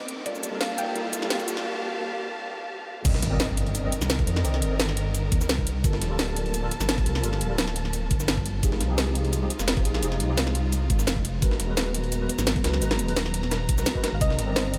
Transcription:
Already playing: C4 D#4 A#4 D6, riser
0.00 kick
0.08 closed hi-hat
0.25 G3 A#3 F4 G4 A4 A#4 D5 F5 A5, kick, closed hi-hat
0.35 shaker
0.43 closed hi-hat, shaker
0.51 G3 F4 A4 A#4
0.61 F5, snare, closed hi-hat
0.78 G5, closed hi-hat, shaker
0.95 G3 F4 A4 A#4, closed hi-hat
1.13 kick, closed hi-hat, shaker
1.20 G3 F4 A4 A#4, snare
1.30 snare, closed hi-hat
1.40 kick, shaker
1.48 closed hi-hat, shaker
1.57 snare
3.04 C2 D3 D#3 C4 A#4 D5 D#5, kick, closed hi-hat, crash, impact, shaker
3.14 snare
3.22 G1, snare, closed hi-hat
3.30 C4 A#4 D5 D#5
3.40 snare, closed hi-hat, shaker
3.57 closed hi-hat
3.67 closed hi-hat
3.75 closed hi-hat, shaker
3.83 C4 A#4 D5 D#5
3.92 closed hi-hat, shaker
4.01 C2, snare, shaker
4.10 snare, closed hi-hat, shaker
4.19 kick, closed hi-hat
4.26 F2 C4 A#4 D5 D#5, closed hi-hat
4.36 snare
4.44 C2 C4 A#4 D5 D#5, closed hi-hat, shaker
4.54 snare
4.62 G1, closed hi-hat
4.71 C4 A#4 D5 D#5
4.80 snare, closed hi-hat, shaker
4.89 snare
4.97 closed hi-hat
5.14 closed hi-hat, shaker
5.32 D#2, kick, closed hi-hat, shaker
5.41 snare, shaker
5.49 C2, snare, closed hi-hat, shaker
5.58 kick
5.67 closed hi-hat
5.83 G1 F3 G3 A#3 F4 A4 A#4 A5, kick, closed hi-hat, shaker
5.93 snare
6.02 D1, snare, closed hi-hat
6.09 G3 F4 A4 A#4
6.19 snare, closed hi-hat, shaker
6.36 closed hi-hat
6.46 closed hi-hat
6.54 closed hi-hat, shaker
6.62 G3 F4 A4 A#4
6.71 closed hi-hat, shaker
6.80 G1, snare, shaker
6.89 snare, closed hi-hat, shaker
6.98 kick, closed hi-hat
7.05 C2 G3 F4 A4 A#4, closed hi-hat
7.15 snare
7.23 G1 G3 F4 A4 A#4, closed hi-hat, shaker
7.33 snare
7.41 D1, closed hi-hat
7.49 G3 F4 A4 A#4
7.58 snare, closed hi-hat, shaker
7.68 snare
7.76 closed hi-hat
7.85 snare
7.93 closed hi-hat, shaker
8.11 G1, kick, closed hi-hat, shaker
8.20 snare, shaker
8.28 snare, closed hi-hat, shaker
8.37 kick
8.46 closed hi-hat
8.62 F1 F3 G#3 D#4 F4 G4 G#4, kick, closed hi-hat, shaker
8.72 snare
8.81 C2, snare, closed hi-hat
8.88 F3 D#4 G4 G#4
8.98 snare, closed hi-hat, shaker
9.15 closed hi-hat
9.25 closed hi-hat
9.33 closed hi-hat, shaker
9.41 F3 D#4 G4 G#4
9.50 closed hi-hat, shaker
9.59 F1, snare, shaker
9.68 snare, closed hi-hat, shaker
9.77 kick, closed hi-hat
9.84 A#1 F3 D#4 G4 G#4, closed hi-hat
9.94 snare
10.02 F1 F3 D#4 G4 G#4, closed hi-hat, shaker
10.12 snare
10.20 C2, closed hi-hat
10.28 F3 D#4 G4 G#4
10.37 snare, closed hi-hat, shaker
10.47 snare
10.55 closed hi-hat
10.72 closed hi-hat, shaker
10.90 G#1, kick, closed hi-hat, shaker
10.99 snare, shaker
11.07 F1, snare, closed hi-hat, shaker
11.17 kick
11.25 closed hi-hat
11.41 G#1 F#3 G#3 B3 F#4 A#4 B4 A#5, kick, closed hi-hat, shaker
11.51 snare
11.60 D#1, snare, closed hi-hat
11.67 G#3 F#4 A#4 B4
11.77 snare, closed hi-hat, shaker
11.94 closed hi-hat
12.04 closed hi-hat
12.12 closed hi-hat, shaker
12.20 G#3 F#4 A#4 B4
12.29 closed hi-hat, shaker
12.38 G#1, snare, shaker
12.47 snare, closed hi-hat, shaker
12.56 kick, closed hi-hat
12.63 C#2 G#3 F#4 A#4 B4, snare, closed hi-hat
12.73 snare
12.81 G#1 G#3 F#4 A#4 B4, closed hi-hat, shaker
12.91 snare, closed hi-hat
12.99 D#1, closed hi-hat, shaker
13.07 G#3 F#4 A#4 B4, closed hi-hat
13.16 snare, closed hi-hat, shaker
13.26 snare
13.34 closed hi-hat
13.43 snare
13.51 snare, closed hi-hat, shaker
13.69 B1, kick, closed hi-hat, shaker
13.77 G#3 F#4 A#4 B4, snare, shaker
13.86 snare, closed hi-hat, shaker
13.95 G#3 F#4 A#4 B4, kick
14.04 snare, closed hi-hat
14.13 G#1 F5
14.20 C2 D3 D#3 C4 A#4 D5 D#5, kick, closed hi-hat, shaker
14.30 snare
14.39 G1, snare, closed hi-hat
14.46 C4 A#4 D5 D#5
14.56 C5, snare, closed hi-hat, shaker
14.74 closed hi-hat

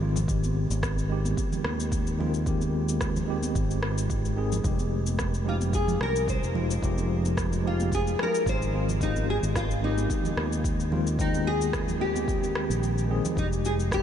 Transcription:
Already playing: G#1
0.00 D#3 G#3 C4 F4
0.16 low conga, cabasa
0.27 D#3 G#3 C4 G4, kick, cabasa
0.44 high conga, cabasa
0.70 G#1, high conga, cabasa
0.83 kick, cross-stick, cabasa
0.98 cabasa
1.08 D#3 G#3 C4 G4
1.25 high conga, cabasa
1.37 kick, cabasa
1.52 low conga, cabasa
1.65 D#2, cross-stick, high conga
1.80 cabasa
1.92 kick, cabasa
2.07 cabasa
2.18 D#3 G#3 C4 F4, low conga
2.34 cabasa
2.44 D#3 G#3 C4 G4, kick, cabasa
2.61 high conga, cabasa
2.89 high conga, cabasa
3.01 kick, cross-stick, cabasa
3.16 low conga, cabasa
3.26 D#3 G#3 C4 G4
3.43 high conga, cabasa
3.55 G#1, kick, cabasa
3.71 cabasa
3.83 cross-stick
3.98 cabasa
4.10 kick, cabasa
4.25 cabasa
4.36 D#3 G#3 C4 G#4
4.52 low conga, cabasa
4.63 F1 F3 G#3 D#4 G4, kick, cabasa
4.79 high conga, cabasa
5.07 high conga, cabasa
5.19 kick, cross-stick, cabasa
5.34 cabasa
5.44 F3 G#3 D#4
5.48 F4 G4
5.61 high conga, cabasa
5.73 G#4, kick, cabasa
5.88 low conga, cabasa
6.01 C2 A#4, cross-stick, high conga
6.16 cabasa
6.28 C5, kick, cabasa
6.43 F1, cabasa
6.54 F3 G#3 D#4 F4, low conga
6.71 cabasa
6.81 F1 F3 G#3 D#4 G4, kick, cabasa
6.96 high conga, cabasa
7.24 high conga, cabasa
7.37 kick, cross-stick, cabasa
7.52 low conga, cabasa
7.63 F3 G#3 D#4 G4
7.67 F4
7.80 high conga, cabasa
7.92 G#4, kick, cabasa
8.07 cabasa
8.19 A#4, cross-stick
8.35 cabasa
8.46 G#1 C5, kick, cabasa
8.62 cabasa
8.72 D#3 G#3 C4 F4
8.89 low conga, cabasa
8.99 D#3 G#3 C4 D#4 G4, kick, cabasa
9.15 high conga, cabasa
9.30 G#4
9.43 G#1, high conga, cabasa
9.55 F4, kick, cross-stick, cabasa
9.71 cabasa
9.81 D#3 G#3 C4 D#4 G4
9.98 high conga, cabasa
10.10 kick, cabasa
10.25 low conga, cabasa
10.37 D#2, cross-stick, high conga
10.53 cabasa
10.64 kick, cabasa
10.80 cabasa
10.91 D#3 G#3 C4 F4, low conga
11.07 cabasa
11.17 D#3 G#3 C4 D#4 G5, kick, cabasa
11.34 high conga, cabasa
11.47 G#4
11.61 high conga, cabasa
11.73 kick, cross-stick, cabasa
11.88 low conga, cabasa
11.99 D#3 G#3 C4 G4
12.15 high conga, cabasa
12.28 kick, cabasa
12.44 cabasa
12.55 cross-stick
12.70 A#1, cabasa
12.83 cabasa
12.98 cabasa
13.09 D#3 G#3 C4 G#4
13.25 low conga, cabasa
13.35 F1 F3 G#3 D#4 G4, kick, cabasa
13.53 cabasa
13.65 G#4, cabasa
13.80 cabasa
13.91 G4, kick, cross-stick, cabasa

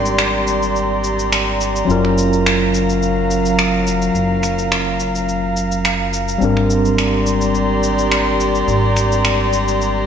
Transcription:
Already playing: G#1 G3 C4 D4 G4 A#4 D5 A#5 C6
0.06 cabasa
0.19 finger snap, cabasa
0.47 cabasa
0.63 cabasa
0.76 cabasa
1.04 cabasa
1.19 cabasa
1.32 finger snap, cabasa
1.61 cabasa
1.76 cabasa
1.85 F#1 F#3 C#4 F5
1.89 F#3 F4 A#4, cabasa
2.05 finger snap
2.18 cabasa
2.33 cabasa
2.46 finger snap, cabasa
2.74 cabasa
2.90 cabasa
3.03 cabasa
3.31 cabasa
3.46 cabasa
3.59 finger snap, cabasa
3.87 cabasa
4.02 cabasa
4.15 F#1, cabasa
4.43 finger snap, cabasa
4.59 cabasa
4.72 finger snap, cabasa
5.00 cabasa
5.15 cabasa
5.29 cabasa
5.57 cabasa
5.72 cabasa
5.85 finger snap, cabasa
6.13 cabasa
6.28 cabasa
6.38 G#1 G3 C4 G4 D5 A#5 C6, cabasa
6.42 D4 A#4
6.57 finger snap
6.70 cabasa
6.85 cabasa
6.98 finger snap, cabasa
7.27 cabasa
7.41 cabasa
7.55 cabasa
7.83 cabasa
7.99 cabasa
8.12 finger snap, cabasa
8.40 cabasa
8.55 cabasa
8.68 G#1, cabasa
8.97 finger snap, cabasa
9.12 cabasa
9.25 finger snap, cabasa
9.53 cabasa
9.68 cabasa
9.82 cabasa

